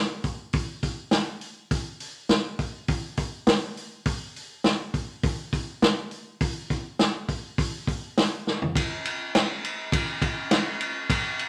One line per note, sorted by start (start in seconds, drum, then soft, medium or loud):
0.24 kick medium
0.24 open hi-hat soft
0.53 kick loud
0.53 open hi-hat medium
0.83 kick medium
0.83 open hi-hat medium
1.11 snare loud
1.11 open hi-hat medium
1.41 open hi-hat soft
1.71 kick loud
1.71 open hi-hat medium
2.00 open hi-hat medium
2.29 snare loud
2.29 open hi-hat medium
2.59 kick medium
2.59 open hi-hat medium
2.88 kick loud
2.88 open hi-hat medium
3.17 kick medium
3.17 open hi-hat medium
3.47 snare loud
3.47 open hi-hat medium
3.77 open hi-hat soft
4.05 kick loud
4.05 open hi-hat medium
4.36 open hi-hat soft
4.64 snare loud
4.64 open hi-hat medium
4.94 kick medium
4.94 open hi-hat soft
5.23 kick loud
5.23 open hi-hat medium
5.53 kick medium
5.53 open hi-hat medium
5.82 snare loud
5.82 open hi-hat medium
6.11 open hi-hat soft
6.41 kick loud
6.41 open hi-hat medium
6.70 kick medium
6.70 open hi-hat soft
6.99 snare loud
6.99 open hi-hat medium
7.29 kick medium
7.29 open hi-hat soft
7.58 kick loud
7.58 open hi-hat medium
7.87 kick medium
7.87 open hi-hat medium
8.17 snare loud
8.17 open hi-hat medium
8.47 snare soft
8.62 floor tom medium
8.76 kick loud
8.76 ride medium
9.05 ride medium
9.35 snare loud
9.35 ride medium
9.64 ride medium
9.92 kick loud
9.92 ride medium
10.22 kick loud
10.22 ride medium
10.51 snare loud
10.51 ride medium
10.81 ride medium
11.10 kick loud
11.10 ride loud
11.39 ride medium